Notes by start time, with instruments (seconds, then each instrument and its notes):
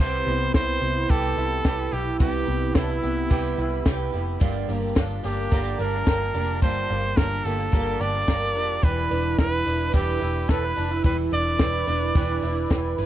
Already playing: clean electric guitar G4
0.00 picked electric bass C2, twelve-string acoustic guitar C3 G3 B3 E4 G4, trumpet C5, crash
0.26 picked electric bass C2, twelve-string acoustic guitar B3 E4 G4
0.54 picked electric bass C2, twelve-string acoustic guitar B3 E4 G4, trumpet C5, kick, snare, closed hi-hat
0.81 picked electric bass C2, twelve-string acoustic guitar B3 E4 G4
1.09 picked electric bass C2, twelve-string acoustic guitar C3 G3 B3 E4 G4, trumpet A4, kick, closed hi-hat
1.36 picked electric bass C2, twelve-string acoustic guitar B3 E4 G4
1.64 picked electric bass C2, twelve-string acoustic guitar G3 B3 E4 G4, kick, snare, closed hi-hat
1.92 picked electric bass B1, twelve-string acoustic guitar B3 E4 G4, trumpet G4
2.20 picked electric bass C2, twelve-string acoustic guitar C3 G3 B3 E4 G4, trumpet G4, kick, closed hi-hat
2.46 picked electric bass C2, twelve-string acoustic guitar B3 E4 G4
2.75 picked electric bass C2, twelve-string acoustic guitar G3 B3 E4 G4, clean electric guitar D4, trumpet E4, kick, snare, closed hi-hat
2.89 clean electric guitar E4
3.02 picked electric bass C2, twelve-string acoustic guitar B3 E4 G4
3.30 picked electric bass C2, twelve-string acoustic guitar C3 G3 B3 E4 G4, kick, closed hi-hat
3.57 picked electric bass C2, twelve-string acoustic guitar B3 E4 G4
3.85 picked electric bass C2, twelve-string acoustic guitar G3 B3 E4 G4, kick, snare, closed hi-hat
4.12 picked electric bass F1, twelve-string acoustic guitar B3 E4 G4
4.40 picked electric bass G1, twelve-string acoustic guitar G2 D3 F3 A#3 D4 G4, kick, closed hi-hat
4.68 picked electric bass G1, twelve-string acoustic guitar F3 A#3 D4 G4, open hi-hat
4.95 picked electric bass G1, twelve-string acoustic guitar F3 A#3 D4 G4, kick, snare, closed hi-hat
5.23 picked electric bass G1, twelve-string acoustic guitar F3 A#3 D4 G4, trumpet G4, open hi-hat
5.51 picked electric bass G1, twelve-string acoustic guitar G2 D3 F3 A#3 D4 G4, clean electric guitar A#4, kick, closed hi-hat
5.78 picked electric bass G1, twelve-string acoustic guitar F3 A#3 D4 G4, trumpet A#4, open hi-hat
6.06 picked electric bass G1, twelve-string acoustic guitar F3 A#3 D4 G4, clean electric guitar A#4, kick, snare, closed hi-hat
6.34 picked electric bass F1, twelve-string acoustic guitar F3 A#3 D4 G4, open hi-hat
6.62 picked electric bass G1, twelve-string acoustic guitar G2 D3 F3 A#3 D4 G4, trumpet C5, kick, closed hi-hat
6.89 picked electric bass G1, twelve-string acoustic guitar F3 A#3 D4 G4, open hi-hat
7.17 picked electric bass G1, twelve-string acoustic guitar F3 A#3 D4 G4, trumpet A#4, kick, snare, closed hi-hat
7.45 picked electric bass G1, twelve-string acoustic guitar F3 A#3 D4 G4, trumpet A4, open hi-hat
7.72 picked electric bass G1, twelve-string acoustic guitar G2 D3 F3 A#3 D4 G4, clean electric guitar A#4, kick, closed hi-hat
8.00 picked electric bass G1, twelve-string acoustic guitar F3 A#3 D4 G4, trumpet D5, open hi-hat
8.28 picked electric bass G1, twelve-string acoustic guitar F3 A#3 D4 G4, clean electric guitar A#4, kick, snare, closed hi-hat
8.55 picked electric bass F1, twelve-string acoustic guitar F3 A#3 D4 G4, open hi-hat
8.83 picked electric bass E1, twelve-string acoustic guitar E3 G3 D4 E4 B4, trumpet B4, kick, closed hi-hat
9.11 picked electric bass E1, twelve-string acoustic guitar D4 E4 B4, open hi-hat
9.38 picked electric bass E1, twelve-string acoustic guitar G3 D4 E4 B4, trumpet B4, kick, snare, closed hi-hat
9.66 picked electric bass E1, twelve-string acoustic guitar D4 E4 B4, open hi-hat
9.93 picked electric bass E1, twelve-string acoustic guitar E3 G3 D4 E4 B4, trumpet G4, kick, closed hi-hat
10.21 picked electric bass E1, twelve-string acoustic guitar D4 E4 B4, open hi-hat
10.48 picked electric bass E1, twelve-string acoustic guitar G3 D4 E4 B4, clean electric guitar A4, trumpet B4, kick, snare, closed hi-hat
10.63 clean electric guitar B4
10.76 picked electric bass F1, twelve-string acoustic guitar D4 E4 B4, open hi-hat
10.91 clean electric guitar E4
11.03 picked electric bass E1, twelve-string acoustic guitar E3 G3 D4 E4 B4, trumpet B4, kick, closed hi-hat
11.31 picked electric bass E1, twelve-string acoustic guitar D4 E4 B4, trumpet D5, open hi-hat
11.59 picked electric bass E1, twelve-string acoustic guitar G3 D4 E4 B4, kick, snare, closed hi-hat
11.87 picked electric bass E1, twelve-string acoustic guitar D4 E4 B4, open hi-hat
12.15 picked electric bass E1, twelve-string acoustic guitar E3 G3 D4 E4 B4, kick, closed hi-hat
12.42 picked electric bass E1, twelve-string acoustic guitar D4 E4 B4, open hi-hat
12.70 picked electric bass E1, twelve-string acoustic guitar G3 D4 E4 B4, kick, snare, closed hi-hat
12.98 picked electric bass G1, twelve-string acoustic guitar D4 E4 B4, open hi-hat